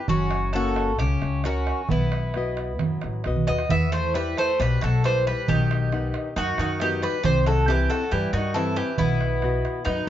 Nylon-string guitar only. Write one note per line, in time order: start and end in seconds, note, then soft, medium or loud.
0.09 0.53 F#3 medium
0.55 0.91 A#3 medium
0.55 0.91 C#4 medium
0.55 0.91 F#4 medium
1.00 1.44 C#3 medium
1.45 1.81 C#4 soft
1.45 1.81 F#4 soft
1.45 1.82 A#4 medium
1.90 2.34 B3 medium
2.36 2.72 F#4 medium
2.36 2.72 B4 soft
2.36 2.72 D#5 medium
2.81 3.24 F#3 medium
3.26 3.62 F#4 soft
3.26 3.62 B4 soft
3.26 3.62 D#5 soft
3.71 4.14 E3 medium
4.16 4.51 E4 medium
4.16 4.51 G4 soft
4.16 4.51 B4 medium
4.60 5.03 B2 medium
5.05 5.40 E4 medium
5.05 5.40 G4 soft
5.05 5.40 B4 medium
5.49 5.92 B2 medium
5.93 6.29 B3 medium
5.93 6.28 D#4 soft
5.93 6.29 F#5 medium
6.38 6.80 F#3 medium
6.82 7.17 B3 medium
6.82 7.17 D#4 soft
6.82 7.17 F#4 medium
7.26 7.68 C3 medium
7.68 8.04 C4 medium
7.68 8.04 E4 soft
7.68 8.04 G4 medium
8.14 8.56 G3 medium
8.56 8.91 C4 soft
8.56 8.91 E4 soft
8.56 8.92 G4 medium
9.01 9.43 B2 medium
9.43 9.78 B3 soft
9.43 9.79 F#4 medium
9.43 9.78 D#5 soft
9.86 10.09 F#3 medium